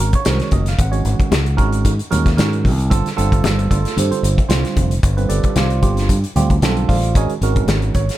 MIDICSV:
0, 0, Header, 1, 5, 480
1, 0, Start_track
1, 0, Tempo, 530504
1, 713, Time_signature, 4, 2, 24, 8
1, 7399, End_track
2, 0, Start_track
2, 0, Title_t, "Tine electric piano"
2, 0, Program_c, 0, 4
2, 0, Note_on_c, 0, 51, 65
2, 0, Note_on_c, 0, 56, 61
2, 0, Note_on_c, 0, 61, 64
2, 3, Note_on_c, 0, 70, 71
2, 104, Note_off_c, 0, 51, 0
2, 104, Note_off_c, 0, 56, 0
2, 105, Note_off_c, 0, 61, 0
2, 123, Note_off_c, 0, 70, 0
2, 137, Note_on_c, 0, 73, 96
2, 226, Note_on_c, 0, 51, 66
2, 227, Note_on_c, 0, 61, 61
2, 228, Note_on_c, 0, 66, 60
2, 231, Note_on_c, 0, 56, 63
2, 233, Note_on_c, 0, 70, 77
2, 237, Note_off_c, 0, 73, 0
2, 245, Note_on_c, 0, 72, 67
2, 364, Note_off_c, 0, 72, 0
2, 384, Note_on_c, 0, 73, 71
2, 478, Note_on_c, 0, 75, 75
2, 481, Note_off_c, 0, 73, 0
2, 601, Note_off_c, 0, 75, 0
2, 619, Note_on_c, 0, 77, 73
2, 623, Note_off_c, 0, 51, 0
2, 624, Note_off_c, 0, 61, 0
2, 624, Note_off_c, 0, 66, 0
2, 625, Note_off_c, 0, 56, 0
2, 626, Note_off_c, 0, 70, 0
2, 718, Note_off_c, 0, 77, 0
2, 736, Note_on_c, 0, 78, 79
2, 826, Note_on_c, 0, 61, 71
2, 829, Note_on_c, 0, 73, 83
2, 830, Note_on_c, 0, 51, 76
2, 830, Note_on_c, 0, 66, 72
2, 831, Note_on_c, 0, 56, 67
2, 1214, Note_off_c, 0, 61, 0
2, 1215, Note_off_c, 0, 51, 0
2, 1215, Note_off_c, 0, 73, 0
2, 1216, Note_off_c, 0, 56, 0
2, 1216, Note_off_c, 0, 66, 0
2, 1420, Note_on_c, 0, 51, 91
2, 1420, Note_on_c, 0, 66, 83
2, 1422, Note_on_c, 0, 61, 81
2, 1423, Note_on_c, 0, 70, 101
2, 1425, Note_on_c, 0, 56, 85
2, 1650, Note_off_c, 0, 78, 0
2, 1741, Note_off_c, 0, 51, 0
2, 1742, Note_off_c, 0, 61, 0
2, 1742, Note_off_c, 0, 66, 0
2, 1743, Note_off_c, 0, 70, 0
2, 1744, Note_off_c, 0, 56, 0
2, 1905, Note_on_c, 0, 61, 84
2, 1906, Note_on_c, 0, 51, 98
2, 1906, Note_on_c, 0, 56, 89
2, 1906, Note_on_c, 0, 66, 85
2, 1909, Note_on_c, 0, 70, 104
2, 2071, Note_off_c, 0, 51, 0
2, 2071, Note_off_c, 0, 56, 0
2, 2071, Note_off_c, 0, 61, 0
2, 2071, Note_off_c, 0, 66, 0
2, 2073, Note_off_c, 0, 70, 0
2, 2141, Note_on_c, 0, 56, 68
2, 2145, Note_on_c, 0, 51, 82
2, 2146, Note_on_c, 0, 61, 68
2, 2146, Note_on_c, 0, 70, 86
2, 2147, Note_on_c, 0, 66, 71
2, 2462, Note_off_c, 0, 56, 0
2, 2464, Note_off_c, 0, 51, 0
2, 2465, Note_off_c, 0, 61, 0
2, 2465, Note_off_c, 0, 66, 0
2, 2465, Note_off_c, 0, 70, 0
2, 2625, Note_on_c, 0, 55, 79
2, 2626, Note_on_c, 0, 50, 88
2, 2626, Note_on_c, 0, 60, 78
2, 2626, Note_on_c, 0, 65, 79
2, 2626, Note_on_c, 0, 69, 101
2, 2791, Note_off_c, 0, 55, 0
2, 2792, Note_off_c, 0, 50, 0
2, 2792, Note_off_c, 0, 60, 0
2, 2792, Note_off_c, 0, 65, 0
2, 2792, Note_off_c, 0, 69, 0
2, 2864, Note_on_c, 0, 50, 96
2, 2867, Note_on_c, 0, 65, 87
2, 2868, Note_on_c, 0, 60, 87
2, 2868, Note_on_c, 0, 69, 107
2, 2869, Note_on_c, 0, 55, 84
2, 3343, Note_off_c, 0, 69, 0
2, 3349, Note_off_c, 0, 65, 0
2, 3354, Note_on_c, 0, 69, 74
2, 3355, Note_on_c, 0, 57, 61
2, 3359, Note_on_c, 0, 62, 59
2, 3360, Note_on_c, 0, 65, 58
2, 3415, Note_off_c, 0, 50, 0
2, 3417, Note_off_c, 0, 55, 0
2, 3417, Note_off_c, 0, 60, 0
2, 3588, Note_off_c, 0, 57, 0
2, 3588, Note_off_c, 0, 69, 0
2, 3590, Note_off_c, 0, 62, 0
2, 3590, Note_off_c, 0, 65, 0
2, 3607, Note_on_c, 0, 72, 66
2, 3612, Note_on_c, 0, 60, 54
2, 3612, Note_on_c, 0, 69, 51
2, 3614, Note_on_c, 0, 67, 53
2, 3710, Note_off_c, 0, 60, 0
2, 3712, Note_off_c, 0, 72, 0
2, 3720, Note_on_c, 0, 65, 63
2, 3721, Note_on_c, 0, 50, 72
2, 3721, Note_on_c, 0, 60, 64
2, 3722, Note_on_c, 0, 55, 64
2, 3723, Note_on_c, 0, 72, 78
2, 3837, Note_off_c, 0, 69, 0
2, 3838, Note_off_c, 0, 67, 0
2, 3953, Note_off_c, 0, 65, 0
2, 3954, Note_off_c, 0, 50, 0
2, 3954, Note_off_c, 0, 55, 0
2, 3954, Note_off_c, 0, 60, 0
2, 3955, Note_off_c, 0, 72, 0
2, 4056, Note_on_c, 0, 50, 83
2, 4058, Note_on_c, 0, 55, 78
2, 4059, Note_on_c, 0, 72, 92
2, 4062, Note_on_c, 0, 65, 75
2, 4063, Note_on_c, 0, 60, 78
2, 4459, Note_off_c, 0, 50, 0
2, 4460, Note_off_c, 0, 55, 0
2, 4460, Note_off_c, 0, 72, 0
2, 4462, Note_off_c, 0, 60, 0
2, 4462, Note_off_c, 0, 65, 0
2, 4678, Note_on_c, 0, 71, 81
2, 4679, Note_on_c, 0, 65, 67
2, 4680, Note_on_c, 0, 50, 76
2, 4680, Note_on_c, 0, 55, 70
2, 4681, Note_on_c, 0, 60, 70
2, 4786, Note_on_c, 0, 74, 83
2, 4789, Note_on_c, 0, 67, 61
2, 4791, Note_on_c, 0, 69, 65
2, 4796, Note_on_c, 0, 62, 65
2, 5023, Note_off_c, 0, 74, 0
2, 5025, Note_off_c, 0, 67, 0
2, 5026, Note_off_c, 0, 69, 0
2, 5028, Note_off_c, 0, 62, 0
2, 5032, Note_off_c, 0, 65, 0
2, 5042, Note_on_c, 0, 65, 62
2, 5042, Note_on_c, 0, 74, 61
2, 5046, Note_on_c, 0, 77, 73
2, 5048, Note_on_c, 0, 72, 60
2, 5060, Note_off_c, 0, 71, 0
2, 5061, Note_off_c, 0, 50, 0
2, 5061, Note_off_c, 0, 55, 0
2, 5062, Note_off_c, 0, 60, 0
2, 5257, Note_off_c, 0, 65, 0
2, 5263, Note_on_c, 0, 55, 72
2, 5263, Note_on_c, 0, 60, 70
2, 5267, Note_on_c, 0, 50, 76
2, 5268, Note_on_c, 0, 65, 66
2, 5271, Note_off_c, 0, 74, 0
2, 5271, Note_on_c, 0, 67, 85
2, 5273, Note_off_c, 0, 77, 0
2, 5274, Note_off_c, 0, 72, 0
2, 5583, Note_off_c, 0, 55, 0
2, 5583, Note_off_c, 0, 60, 0
2, 5585, Note_off_c, 0, 50, 0
2, 5586, Note_off_c, 0, 65, 0
2, 5587, Note_off_c, 0, 67, 0
2, 5750, Note_on_c, 0, 50, 94
2, 5753, Note_on_c, 0, 55, 88
2, 5756, Note_on_c, 0, 65, 86
2, 5756, Note_on_c, 0, 67, 96
2, 5758, Note_on_c, 0, 60, 84
2, 5913, Note_off_c, 0, 50, 0
2, 5915, Note_off_c, 0, 55, 0
2, 5916, Note_off_c, 0, 67, 0
2, 5917, Note_off_c, 0, 60, 0
2, 5917, Note_off_c, 0, 65, 0
2, 5993, Note_on_c, 0, 55, 74
2, 5994, Note_on_c, 0, 50, 80
2, 5994, Note_on_c, 0, 65, 70
2, 5994, Note_on_c, 0, 69, 86
2, 5995, Note_on_c, 0, 60, 72
2, 6220, Note_off_c, 0, 65, 0
2, 6230, Note_on_c, 0, 77, 78
2, 6231, Note_on_c, 0, 65, 62
2, 6233, Note_on_c, 0, 74, 66
2, 6239, Note_on_c, 0, 72, 65
2, 6308, Note_off_c, 0, 50, 0
2, 6308, Note_off_c, 0, 55, 0
2, 6308, Note_off_c, 0, 69, 0
2, 6309, Note_off_c, 0, 60, 0
2, 6465, Note_off_c, 0, 65, 0
2, 6465, Note_off_c, 0, 77, 0
2, 6467, Note_off_c, 0, 74, 0
2, 6469, Note_off_c, 0, 72, 0
2, 6478, Note_on_c, 0, 51, 72
2, 6478, Note_on_c, 0, 61, 66
2, 6479, Note_on_c, 0, 66, 65
2, 6480, Note_on_c, 0, 56, 65
2, 6484, Note_on_c, 0, 70, 77
2, 6485, Note_on_c, 0, 80, 87
2, 6489, Note_on_c, 0, 68, 70
2, 6489, Note_on_c, 0, 73, 69
2, 6489, Note_on_c, 0, 75, 72
2, 6626, Note_off_c, 0, 80, 0
2, 6628, Note_off_c, 0, 68, 0
2, 6628, Note_off_c, 0, 73, 0
2, 6629, Note_off_c, 0, 75, 0
2, 6637, Note_off_c, 0, 51, 0
2, 6637, Note_off_c, 0, 61, 0
2, 6637, Note_off_c, 0, 66, 0
2, 6638, Note_off_c, 0, 56, 0
2, 6640, Note_off_c, 0, 70, 0
2, 6722, Note_on_c, 0, 51, 80
2, 6722, Note_on_c, 0, 61, 71
2, 6724, Note_on_c, 0, 66, 74
2, 6725, Note_on_c, 0, 56, 73
2, 6725, Note_on_c, 0, 70, 89
2, 7193, Note_on_c, 0, 73, 78
2, 7263, Note_off_c, 0, 51, 0
2, 7263, Note_off_c, 0, 61, 0
2, 7264, Note_off_c, 0, 56, 0
2, 7264, Note_off_c, 0, 66, 0
2, 7264, Note_off_c, 0, 70, 0
2, 7399, Note_off_c, 0, 73, 0
2, 7399, End_track
3, 0, Start_track
3, 0, Title_t, "Fingered electric bass"
3, 0, Program_c, 1, 33
3, 0, Note_on_c, 1, 32, 87
3, 117, Note_off_c, 1, 32, 0
3, 240, Note_on_c, 1, 36, 92
3, 358, Note_off_c, 1, 36, 0
3, 470, Note_on_c, 1, 30, 83
3, 698, Note_off_c, 1, 30, 0
3, 712, Note_on_c, 1, 32, 93
3, 939, Note_off_c, 1, 32, 0
3, 949, Note_on_c, 1, 32, 91
3, 1073, Note_off_c, 1, 32, 0
3, 1186, Note_on_c, 1, 37, 88
3, 1416, Note_off_c, 1, 37, 0
3, 1428, Note_on_c, 1, 32, 83
3, 1658, Note_off_c, 1, 32, 0
3, 1672, Note_on_c, 1, 44, 80
3, 1796, Note_off_c, 1, 44, 0
3, 1925, Note_on_c, 1, 39, 92
3, 2147, Note_off_c, 1, 39, 0
3, 2153, Note_on_c, 1, 44, 81
3, 2400, Note_on_c, 1, 36, 94
3, 2414, Note_off_c, 1, 44, 0
3, 2625, Note_off_c, 1, 36, 0
3, 2638, Note_on_c, 1, 31, 91
3, 2759, Note_off_c, 1, 31, 0
3, 2882, Note_on_c, 1, 31, 95
3, 3106, Note_off_c, 1, 31, 0
3, 3124, Note_on_c, 1, 31, 87
3, 3347, Note_off_c, 1, 31, 0
3, 3354, Note_on_c, 1, 31, 80
3, 3477, Note_off_c, 1, 31, 0
3, 3588, Note_on_c, 1, 43, 81
3, 3714, Note_off_c, 1, 43, 0
3, 3828, Note_on_c, 1, 31, 94
3, 3954, Note_off_c, 1, 31, 0
3, 4062, Note_on_c, 1, 36, 96
3, 4191, Note_off_c, 1, 36, 0
3, 4314, Note_on_c, 1, 29, 90
3, 4541, Note_off_c, 1, 29, 0
3, 4553, Note_on_c, 1, 31, 97
3, 4781, Note_off_c, 1, 31, 0
3, 4791, Note_on_c, 1, 31, 90
3, 4915, Note_off_c, 1, 31, 0
3, 5029, Note_on_c, 1, 36, 87
3, 5258, Note_off_c, 1, 36, 0
3, 5269, Note_on_c, 1, 31, 84
3, 5499, Note_off_c, 1, 31, 0
3, 5512, Note_on_c, 1, 43, 83
3, 5635, Note_off_c, 1, 43, 0
3, 5751, Note_on_c, 1, 38, 85
3, 5977, Note_off_c, 1, 38, 0
3, 5982, Note_on_c, 1, 35, 83
3, 6204, Note_off_c, 1, 35, 0
3, 6234, Note_on_c, 1, 33, 80
3, 6450, Note_off_c, 1, 33, 0
3, 6470, Note_on_c, 1, 32, 87
3, 6594, Note_off_c, 1, 32, 0
3, 6707, Note_on_c, 1, 32, 95
3, 6937, Note_off_c, 1, 32, 0
3, 6942, Note_on_c, 1, 32, 83
3, 7174, Note_off_c, 1, 32, 0
3, 7193, Note_on_c, 1, 32, 76
3, 7315, Note_off_c, 1, 32, 0
3, 7399, End_track
4, 0, Start_track
4, 0, Title_t, "Muted fingered electric bass strokes"
4, 1080, Note_on_c, 9, 29, 35
4, 1171, Note_off_c, 9, 29, 0
4, 2772, Note_on_c, 9, 29, 35
4, 2863, Note_off_c, 9, 29, 0
4, 3723, Note_on_c, 9, 29, 37
4, 3813, Note_off_c, 9, 29, 0
4, 4922, Note_on_c, 9, 29, 34
4, 5013, Note_off_c, 9, 29, 0
4, 6611, Note_on_c, 9, 29, 34
4, 6701, Note_off_c, 9, 29, 0
4, 7399, End_track
5, 0, Start_track
5, 0, Title_t, "Drums"
5, 117, Note_on_c, 9, 42, 40
5, 119, Note_on_c, 9, 36, 78
5, 207, Note_off_c, 9, 42, 0
5, 210, Note_off_c, 9, 36, 0
5, 226, Note_on_c, 9, 42, 84
5, 234, Note_on_c, 9, 38, 104
5, 316, Note_off_c, 9, 42, 0
5, 325, Note_off_c, 9, 38, 0
5, 358, Note_on_c, 9, 42, 37
5, 367, Note_on_c, 9, 38, 32
5, 449, Note_off_c, 9, 42, 0
5, 457, Note_off_c, 9, 38, 0
5, 464, Note_on_c, 9, 42, 55
5, 470, Note_on_c, 9, 36, 75
5, 476, Note_on_c, 9, 63, 67
5, 555, Note_off_c, 9, 42, 0
5, 560, Note_off_c, 9, 36, 0
5, 567, Note_off_c, 9, 63, 0
5, 597, Note_on_c, 9, 42, 38
5, 605, Note_on_c, 9, 38, 33
5, 688, Note_off_c, 9, 42, 0
5, 696, Note_off_c, 9, 38, 0
5, 711, Note_on_c, 9, 36, 101
5, 711, Note_on_c, 9, 42, 79
5, 720, Note_on_c, 9, 62, 27
5, 801, Note_off_c, 9, 36, 0
5, 802, Note_off_c, 9, 42, 0
5, 810, Note_off_c, 9, 62, 0
5, 839, Note_on_c, 9, 42, 36
5, 930, Note_off_c, 9, 42, 0
5, 949, Note_on_c, 9, 42, 55
5, 1039, Note_off_c, 9, 42, 0
5, 1082, Note_on_c, 9, 36, 84
5, 1083, Note_on_c, 9, 42, 35
5, 1172, Note_off_c, 9, 36, 0
5, 1173, Note_off_c, 9, 42, 0
5, 1192, Note_on_c, 9, 63, 92
5, 1193, Note_on_c, 9, 42, 71
5, 1201, Note_on_c, 9, 38, 95
5, 1283, Note_off_c, 9, 42, 0
5, 1283, Note_off_c, 9, 63, 0
5, 1292, Note_off_c, 9, 38, 0
5, 1324, Note_on_c, 9, 42, 35
5, 1415, Note_off_c, 9, 42, 0
5, 1432, Note_on_c, 9, 36, 73
5, 1433, Note_on_c, 9, 42, 54
5, 1523, Note_off_c, 9, 36, 0
5, 1524, Note_off_c, 9, 42, 0
5, 1561, Note_on_c, 9, 42, 36
5, 1652, Note_off_c, 9, 42, 0
5, 1672, Note_on_c, 9, 42, 73
5, 1673, Note_on_c, 9, 36, 65
5, 1763, Note_off_c, 9, 36, 0
5, 1763, Note_off_c, 9, 42, 0
5, 1804, Note_on_c, 9, 42, 35
5, 1895, Note_off_c, 9, 42, 0
5, 1916, Note_on_c, 9, 42, 58
5, 1922, Note_on_c, 9, 63, 66
5, 1922, Note_on_c, 9, 64, 65
5, 2006, Note_off_c, 9, 42, 0
5, 2013, Note_off_c, 9, 63, 0
5, 2013, Note_off_c, 9, 64, 0
5, 2044, Note_on_c, 9, 36, 80
5, 2044, Note_on_c, 9, 42, 35
5, 2052, Note_on_c, 9, 38, 34
5, 2134, Note_off_c, 9, 36, 0
5, 2135, Note_off_c, 9, 42, 0
5, 2143, Note_off_c, 9, 38, 0
5, 2156, Note_on_c, 9, 42, 80
5, 2158, Note_on_c, 9, 63, 69
5, 2164, Note_on_c, 9, 38, 105
5, 2246, Note_off_c, 9, 42, 0
5, 2249, Note_off_c, 9, 63, 0
5, 2255, Note_off_c, 9, 38, 0
5, 2290, Note_on_c, 9, 42, 36
5, 2380, Note_off_c, 9, 42, 0
5, 2397, Note_on_c, 9, 36, 81
5, 2404, Note_on_c, 9, 46, 70
5, 2487, Note_off_c, 9, 36, 0
5, 2494, Note_off_c, 9, 46, 0
5, 2529, Note_on_c, 9, 42, 38
5, 2619, Note_off_c, 9, 42, 0
5, 2636, Note_on_c, 9, 36, 113
5, 2637, Note_on_c, 9, 42, 81
5, 2726, Note_off_c, 9, 36, 0
5, 2727, Note_off_c, 9, 42, 0
5, 2769, Note_on_c, 9, 42, 36
5, 2777, Note_on_c, 9, 38, 33
5, 2859, Note_off_c, 9, 42, 0
5, 2867, Note_off_c, 9, 38, 0
5, 2875, Note_on_c, 9, 62, 29
5, 2879, Note_on_c, 9, 42, 61
5, 2965, Note_off_c, 9, 62, 0
5, 2970, Note_off_c, 9, 42, 0
5, 3005, Note_on_c, 9, 36, 84
5, 3009, Note_on_c, 9, 42, 39
5, 3095, Note_off_c, 9, 36, 0
5, 3099, Note_off_c, 9, 42, 0
5, 3112, Note_on_c, 9, 63, 95
5, 3119, Note_on_c, 9, 42, 78
5, 3127, Note_on_c, 9, 38, 99
5, 3202, Note_off_c, 9, 63, 0
5, 3210, Note_off_c, 9, 42, 0
5, 3218, Note_off_c, 9, 38, 0
5, 3248, Note_on_c, 9, 42, 37
5, 3339, Note_off_c, 9, 42, 0
5, 3355, Note_on_c, 9, 36, 70
5, 3359, Note_on_c, 9, 42, 61
5, 3445, Note_off_c, 9, 36, 0
5, 3449, Note_off_c, 9, 42, 0
5, 3485, Note_on_c, 9, 42, 39
5, 3493, Note_on_c, 9, 38, 33
5, 3576, Note_off_c, 9, 42, 0
5, 3584, Note_off_c, 9, 38, 0
5, 3595, Note_on_c, 9, 62, 30
5, 3595, Note_on_c, 9, 63, 72
5, 3599, Note_on_c, 9, 42, 86
5, 3686, Note_off_c, 9, 62, 0
5, 3686, Note_off_c, 9, 63, 0
5, 3690, Note_off_c, 9, 42, 0
5, 3726, Note_on_c, 9, 42, 39
5, 3817, Note_off_c, 9, 42, 0
5, 3838, Note_on_c, 9, 42, 61
5, 3929, Note_off_c, 9, 42, 0
5, 3964, Note_on_c, 9, 36, 82
5, 3966, Note_on_c, 9, 42, 41
5, 4054, Note_off_c, 9, 36, 0
5, 4057, Note_off_c, 9, 42, 0
5, 4070, Note_on_c, 9, 42, 86
5, 4078, Note_on_c, 9, 38, 110
5, 4160, Note_off_c, 9, 42, 0
5, 4168, Note_off_c, 9, 38, 0
5, 4205, Note_on_c, 9, 42, 38
5, 4213, Note_on_c, 9, 38, 33
5, 4296, Note_off_c, 9, 42, 0
5, 4304, Note_off_c, 9, 38, 0
5, 4311, Note_on_c, 9, 63, 73
5, 4314, Note_on_c, 9, 36, 79
5, 4315, Note_on_c, 9, 42, 61
5, 4402, Note_off_c, 9, 63, 0
5, 4404, Note_off_c, 9, 36, 0
5, 4405, Note_off_c, 9, 42, 0
5, 4443, Note_on_c, 9, 42, 41
5, 4534, Note_off_c, 9, 42, 0
5, 4552, Note_on_c, 9, 42, 84
5, 4553, Note_on_c, 9, 36, 111
5, 4563, Note_on_c, 9, 62, 28
5, 4643, Note_off_c, 9, 42, 0
5, 4644, Note_off_c, 9, 36, 0
5, 4653, Note_off_c, 9, 62, 0
5, 4685, Note_on_c, 9, 42, 37
5, 4775, Note_off_c, 9, 42, 0
5, 4792, Note_on_c, 9, 42, 62
5, 4798, Note_on_c, 9, 62, 31
5, 4883, Note_off_c, 9, 42, 0
5, 4889, Note_off_c, 9, 62, 0
5, 4917, Note_on_c, 9, 42, 37
5, 4921, Note_on_c, 9, 36, 77
5, 5008, Note_off_c, 9, 42, 0
5, 5011, Note_off_c, 9, 36, 0
5, 5028, Note_on_c, 9, 42, 81
5, 5032, Note_on_c, 9, 63, 95
5, 5036, Note_on_c, 9, 38, 100
5, 5119, Note_off_c, 9, 42, 0
5, 5123, Note_off_c, 9, 63, 0
5, 5127, Note_off_c, 9, 38, 0
5, 5160, Note_on_c, 9, 42, 35
5, 5251, Note_off_c, 9, 42, 0
5, 5271, Note_on_c, 9, 42, 54
5, 5272, Note_on_c, 9, 36, 78
5, 5362, Note_off_c, 9, 42, 0
5, 5363, Note_off_c, 9, 36, 0
5, 5402, Note_on_c, 9, 42, 37
5, 5411, Note_on_c, 9, 38, 34
5, 5493, Note_off_c, 9, 42, 0
5, 5501, Note_off_c, 9, 38, 0
5, 5511, Note_on_c, 9, 42, 77
5, 5512, Note_on_c, 9, 36, 66
5, 5602, Note_off_c, 9, 36, 0
5, 5602, Note_off_c, 9, 42, 0
5, 5644, Note_on_c, 9, 42, 37
5, 5735, Note_off_c, 9, 42, 0
5, 5754, Note_on_c, 9, 42, 58
5, 5766, Note_on_c, 9, 63, 70
5, 5766, Note_on_c, 9, 64, 64
5, 5845, Note_off_c, 9, 42, 0
5, 5856, Note_off_c, 9, 63, 0
5, 5856, Note_off_c, 9, 64, 0
5, 5881, Note_on_c, 9, 42, 36
5, 5882, Note_on_c, 9, 36, 85
5, 5971, Note_off_c, 9, 42, 0
5, 5972, Note_off_c, 9, 36, 0
5, 5992, Note_on_c, 9, 63, 69
5, 5993, Note_on_c, 9, 42, 77
5, 6001, Note_on_c, 9, 38, 108
5, 6083, Note_off_c, 9, 42, 0
5, 6083, Note_off_c, 9, 63, 0
5, 6091, Note_off_c, 9, 38, 0
5, 6123, Note_on_c, 9, 42, 38
5, 6214, Note_off_c, 9, 42, 0
5, 6234, Note_on_c, 9, 36, 80
5, 6237, Note_on_c, 9, 46, 76
5, 6324, Note_off_c, 9, 36, 0
5, 6327, Note_off_c, 9, 46, 0
5, 6365, Note_on_c, 9, 42, 36
5, 6456, Note_off_c, 9, 42, 0
5, 6472, Note_on_c, 9, 36, 105
5, 6473, Note_on_c, 9, 42, 78
5, 6562, Note_off_c, 9, 36, 0
5, 6563, Note_off_c, 9, 42, 0
5, 6601, Note_on_c, 9, 42, 38
5, 6691, Note_off_c, 9, 42, 0
5, 6712, Note_on_c, 9, 42, 57
5, 6720, Note_on_c, 9, 62, 31
5, 6802, Note_off_c, 9, 42, 0
5, 6811, Note_off_c, 9, 62, 0
5, 6839, Note_on_c, 9, 42, 37
5, 6841, Note_on_c, 9, 36, 81
5, 6929, Note_off_c, 9, 42, 0
5, 6931, Note_off_c, 9, 36, 0
5, 6948, Note_on_c, 9, 42, 80
5, 6953, Note_on_c, 9, 63, 93
5, 6956, Note_on_c, 9, 38, 102
5, 7038, Note_off_c, 9, 42, 0
5, 7044, Note_off_c, 9, 63, 0
5, 7046, Note_off_c, 9, 38, 0
5, 7077, Note_on_c, 9, 42, 38
5, 7167, Note_off_c, 9, 42, 0
5, 7189, Note_on_c, 9, 42, 61
5, 7191, Note_on_c, 9, 36, 75
5, 7280, Note_off_c, 9, 42, 0
5, 7281, Note_off_c, 9, 36, 0
5, 7321, Note_on_c, 9, 42, 40
5, 7329, Note_on_c, 9, 38, 35
5, 7399, Note_off_c, 9, 38, 0
5, 7399, Note_off_c, 9, 42, 0
5, 7399, End_track
0, 0, End_of_file